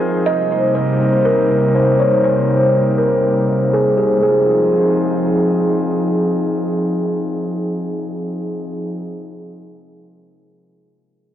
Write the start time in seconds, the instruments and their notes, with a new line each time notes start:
Already playing: analog synth pad F3 C4 D#4 G#4, harp F3 G#3 D#4 G#5
0.01 harp F5
0.26 analog synth pad C3 G3 A#3 D#4, kalimba D#5, harp A#5
0.52 harp C5
0.75 kalimba C5
1.01 harp C4
1.25 harp A#3, kalimba A#4
1.50 harp C3
1.75 kalimba C5, harp A#5
1.99 harp C5, kalimba C#5
2.24 kalimba C5, harp A#5
2.49 harp C5
2.98 harp C4, kalimba A#4
3.23 harp A#3
3.48 harp C3
3.73 kalimba G#4, harp A#5
3.97 kalimba G4, harp C5
4.17 harp G#3
4.22 analog synth pad F3 C4 D#4 G#4, harp D#4, kalimba G#4
4.29 harp F4